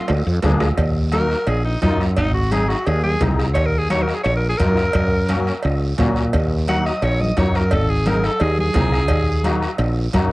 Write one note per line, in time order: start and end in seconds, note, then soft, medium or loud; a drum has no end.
0.08 0.23 D2 medium
0.08 bombo rim medium
0.08 cowbell medium
0.08 low timbale medium
0.08 long guiro medium
0.27 0.41 F2 medium
0.42 0.71 D2 medium
0.42 0.68 A#3 medium
0.42 0.68 D4 medium
0.42 0.68 G#4 loud
0.42 bombo low medium
0.42 bombo rim medium
0.42 cowbell medium
0.42 high conga medium
0.42 low conga medium
0.42 low timbale medium
0.42 short guiro medium
0.60 bombo rim medium
0.60 low timbale medium
0.60 short guiro medium
0.77 1.34 D#2 medium
0.77 bombo low medium
0.77 bombo rim medium
0.77 cowbell loud
0.77 long guiro medium
1.12 1.37 A#3 medium
1.12 1.37 D#4 medium
1.12 1.37 F#4 medium
1.12 1.50 A#4 loud
1.12 bombo rim medium
1.12 cowbell medium
1.12 high conga medium
1.12 short guiro medium
1.30 bombo rim medium
1.30 short guiro medium
1.47 1.75 A#1 medium
1.47 1.64 G#4 medium
1.47 bombo rim medium
1.47 cowbell medium
1.47 long guiro medium
1.64 1.81 D#4 medium
1.82 2.19 F#2 medium
1.82 2.07 A#3 medium
1.82 1.99 D#4 medium
1.82 2.07 D#4 medium
1.82 2.07 F4 medium
1.82 bombo low medium
1.82 bombo rim medium
1.82 cowbell medium
1.82 high conga medium
1.82 low timbale medium
1.82 short guiro medium
2.00 bombo rim medium
2.00 short guiro medium
2.17 2.73 G#1 medium
2.17 2.33 D#4 loud
2.17 bombo low medium
2.17 bombo rim medium
2.17 cowbell medium
2.17 long guiro medium
2.34 2.53 F#4 medium
2.51 2.76 C4 medium
2.51 2.76 D#4 medium
2.51 2.70 G#4 medium
2.51 2.76 G#4 medium
2.51 bombo rim medium
2.51 cowbell medium
2.51 high conga medium
2.51 short guiro medium
2.69 2.88 F#4 medium
2.69 bombo rim medium
2.69 short guiro medium
2.87 3.15 D#2 medium
2.87 3.03 G#4 medium
2.87 bombo rim medium
2.87 cowbell medium
2.87 long guiro medium
3.03 3.21 G#4 loud
3.03 high conga medium
3.20 3.56 C2 medium
3.20 3.45 C4 medium
3.20 3.45 D#4 medium
3.20 3.45 G#4 medium
3.20 bombo low medium
3.20 bombo rim medium
3.20 cowbell medium
3.20 high conga medium
3.20 low conga medium
3.20 low timbale medium
3.20 short guiro medium
3.39 bombo rim medium
3.39 short guiro medium
3.54 4.11 D#2 loud
3.54 3.68 C#5 loud
3.54 bombo low medium
3.54 bombo rim medium
3.54 cowbell loud
3.54 long guiro medium
3.66 3.79 A#4 medium
3.78 3.90 G#4 medium
3.89 4.14 A#3 medium
3.89 4.15 D#4 medium
3.89 4.15 F#4 medium
3.89 4.04 C#5 loud
3.89 bombo rim medium
3.89 cowbell medium
3.89 high conga medium
3.89 short guiro medium
4.02 4.15 A#4 medium
4.08 bombo rim medium
4.08 short guiro medium
4.14 4.23 G#4 medium
4.23 4.53 A#1 loud
4.23 4.36 C#5 medium
4.23 bombo rim medium
4.23 cowbell medium
4.23 long guiro medium
4.36 4.48 A#4 medium
4.49 4.59 G#4 medium
4.57 4.88 F#2 medium
4.57 4.84 A#3 medium
4.57 4.84 D#4 medium
4.57 4.84 F4 medium
4.57 5.60 A#4 loud
4.57 bombo low medium
4.57 bombo rim medium
4.57 cowbell medium
4.57 high conga medium
4.57 short guiro medium
4.77 bombo rim medium
4.77 short guiro medium
4.93 5.50 F#2 loud
4.93 bombo low medium
4.93 bombo rim medium
4.93 cowbell loud
4.93 long guiro medium
5.28 5.53 A#3 medium
5.28 5.53 C#4 medium
5.28 5.54 F#4 medium
5.28 bombo rim medium
5.28 cowbell medium
5.28 high conga medium
5.28 short guiro medium
5.47 bombo rim medium
5.47 short guiro medium
5.63 5.92 C#2 medium
5.63 bombo rim medium
5.63 cowbell medium
5.63 long guiro medium
5.97 6.36 A#2 medium
5.97 6.22 A#3 medium
5.97 6.22 C#4 medium
5.97 6.23 F#4 medium
5.97 bombo low medium
5.97 bombo rim medium
5.97 cowbell medium
5.97 high conga medium
5.97 low conga medium
5.97 low timbale medium
5.97 short guiro medium
6.16 bombo rim medium
6.16 short guiro medium
6.33 6.89 D#2 medium
6.33 bombo low medium
6.33 bombo rim medium
6.33 cowbell loud
6.33 long guiro medium
6.67 6.92 A#3 medium
6.67 6.92 D#4 medium
6.67 6.93 F#4 medium
6.67 6.87 F#5 medium
6.67 bombo rim loud
6.67 cowbell medium
6.67 high conga medium
6.67 short guiro medium
6.86 7.05 D#5 medium
6.86 bombo rim medium
6.86 short guiro medium
7.02 7.30 A#1 medium
7.02 7.22 C#5 medium
7.02 bombo rim medium
7.02 cowbell medium
7.02 long guiro medium
7.21 7.37 D#5 medium
7.21 high conga medium
7.36 7.74 F#2 medium
7.36 7.61 A#3 medium
7.36 7.61 D#4 medium
7.36 7.62 F#4 medium
7.36 7.58 C#5 medium
7.36 bombo low medium
7.36 bombo rim medium
7.36 cowbell medium
7.36 high conga medium
7.36 low timbale medium
7.36 short guiro medium
7.55 7.74 A#4 medium
7.55 bombo rim medium
7.55 short guiro medium
7.71 8.28 G#1 loud
7.71 7.91 A4 medium
7.71 bombo low medium
7.71 bombo rim medium
7.71 cowbell loud
7.71 long guiro medium
7.89 8.08 G#4 medium
8.06 8.30 C4 medium
8.06 8.31 D#4 medium
8.06 8.31 G#4 medium
8.06 8.27 A#4 medium
8.06 bombo rim medium
8.06 cowbell medium
8.06 high conga loud
8.06 short guiro medium
8.24 8.43 A4 medium
8.24 bombo rim medium
8.24 short guiro medium
8.40 8.69 D#2 loud
8.40 8.58 G#4 loud
8.40 bombo rim medium
8.40 cowbell medium
8.40 long guiro medium
8.58 9.60 G#4 medium
8.58 high conga medium
8.74 9.10 C2 loud
8.74 9.00 C4 medium
8.74 9.00 D#4 medium
8.74 9.00 G#4 medium
8.74 bombo low medium
8.74 bombo rim medium
8.74 cowbell medium
8.74 high conga medium
8.74 low conga medium
8.74 low timbale medium
8.74 short guiro medium
8.92 bombo rim medium
8.92 short guiro medium
9.08 9.66 D#2 loud
9.08 bombo low medium
9.08 bombo rim medium
9.08 cowbell loud
9.08 long guiro medium
9.44 9.69 A#3 medium
9.44 9.69 D#4 medium
9.44 9.69 F#4 loud
9.44 bombo rim medium
9.44 cowbell medium
9.44 high conga medium
9.44 short guiro medium
9.62 bombo rim medium
9.62 short guiro medium
9.78 10.07 A#1 loud
9.78 bombo rim medium
9.78 cowbell medium
9.78 long guiro medium
10.13 10.32 F#2 loud
10.13 10.32 A#3 loud
10.13 10.32 D#4 medium
10.13 10.32 F#4 loud
10.13 bombo low medium
10.13 bombo rim medium
10.13 cowbell medium
10.13 high conga medium
10.13 short guiro medium